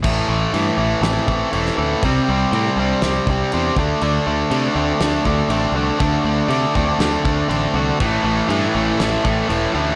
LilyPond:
<<
  \new Staff \with { instrumentName = "Clean electric guitar" } { \time 4/4 \key a \dorian \tempo 4 = 120 a,8 e8 e8 e'8 c'8 e8 e'8 a'8 | c8 g8 g8 d'8 c'8 g8 d'8 d8 | d8 a8 d8 c'8 a8 d8 c'8 fis'8 | d8 a8 d8 c'8 a8 d8 c'8 fis'8 |
r1 | }
  \new Staff \with { instrumentName = "Overdriven electric guitar" } { \clef bass \time 4/4 \key a \dorian <a, e a>8 <a, e a>8 <a, e a>8 <a, e a>8 <a, e a>8 <a, e a>8 <a, e a>8 <a, e a>8 | <c g c'>8 <c g c'>8 <c g c'>8 <c g c'>8 <c g c'>8 <c g c'>8 <c g c'>8 <d a d'>8 | <d a d'>8 <d a d'>8 <d a d'>8 <d a d'>8 <d a d'>8 <d a d'>8 <d a d'>8 <d a d'>8 | <d a d'>8 <d a d'>8 <d a d'>8 <d a d'>8 <d a d'>8 <d a d'>8 <d a d'>8 <d a d'>8 |
<a, e a>8 <a, e a>8 <a, e a>8 <a, e a>8 <a, e a>8 <a, e a>8 <a, e a>8 <a, e a>8 | }
  \new Staff \with { instrumentName = "Distorted electric guitar" } { \clef bass \time 4/4 \key a \dorian r1 | r1 | r1 | r1 |
<a, e a>8 <a, e a>8 <a, e a>8 <a, e a>8 <a, e a>8 <a, e a>8 <a, e a>8 <a, e a>8 | }
  \new Staff \with { instrumentName = "Picked electric bass" } { \clef bass \time 4/4 \key a \dorian a,,8 a,,8 g,8 a,,8 a,,8 a,,8 e,,8 d,8 | c,8 c,8 a,8 c,8 c,8 c,8 e,8 d,8 | d,8 d,8 c8 d,8 d,8 d,8 a,,8 c,8 | d,8 d,8 c8 d,8 d,8 d,8 a,,8 c,8 |
a,,8 a,,8 g,8 a,,8 a,,8 a,,8 e,,8 d,8 | }
  \new DrumStaff \with { instrumentName = "Drums" } \drummode { \time 4/4 <cymc bd>4 cymc4 <cymc sn>8 bd8 cymc16 sn8. | <cymc bd>4 cymc4 <cymc sn>8 bd8 cymc8 bd8 | cymc4 cymc4 <cymc sn>8 bd8 cymc4 | <cymc bd>4 cymc8 bd8 <cymc sn>8 bd8 cymc4 |
<cymc bd>4 cymc4 <cymc sn>8 bd8 cymc4 | }
>>